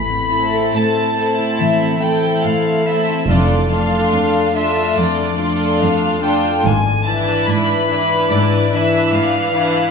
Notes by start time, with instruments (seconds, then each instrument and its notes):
Already playing: double bass section A1, cello section A2, harp A2, violin section B5
0.09 harp C4
0.29 viola section A3 C4, violin section E4 A4, harp E4
0.53 harp A4
0.73 cello section A2, harp C5, violin section A5
0.97 harp E5
1.16 viola section A3 C4, violin section E4 A4, harp C5
1.38 harp E4
1.58 cello section A2, harp E3, violin section E5
1.80 harp C4
2.00 viola section A3 C4, violin section E4 A4 G5, harp E4
2.23 harp A4
2.44 cello section A2, harp C5, violin section F5
2.66 harp E5
2.86 viola section A3 C4, violin section E4 A4 E5, harp C5
3.08 harp E4
3.28 double bass section F1, cello section F2, harp F2, viola section A3 D4, violin section F4 A4 D5
3.50 harp D4
3.69 viola section A3 D4, violin section F4 A4 F5, harp F4
3.92 harp A4
4.13 cello section F2, harp D5
4.34 harp F5
4.54 viola section A3 D4, violin section F4 A4 E5, harp D5
4.76 harp F4
4.97 harp F2, cello section F2, violin section D5
5.18 harp D4
5.38 viola section A3 D4, violin section F4 A4, harp F4
5.60 harp A4
5.80 cello section F2, harp D5, violin section F5
6.01 harp F5
6.21 viola section A3 D4, violin section F4 A4 G5, harp D5
6.44 harp F4
6.64 double bass section G#1, cello section G#2, harp G#2, violin section G#5
6.86 harp D4
7.04 viola section E3 D4, violin section E4 B4 A5, harp E4
7.27 harp B4
7.46 cello section G#2, harp D5, violin section B5
7.69 harp E5
7.89 viola section E3 D4, violin section E4 B4, harp D5
8.11 harp E4
8.30 cello section G#2, harp G#2, violin section D5
8.53 harp D4
8.72 viola section E3 D4, violin section E4 B4 E5, harp E4
8.94 harp B4
9.14 cello section G#2, harp D5, violin section F5
9.34 harp E5
9.53 viola section E3 D4, violin section E4 B4, harp D5
9.74 harp E4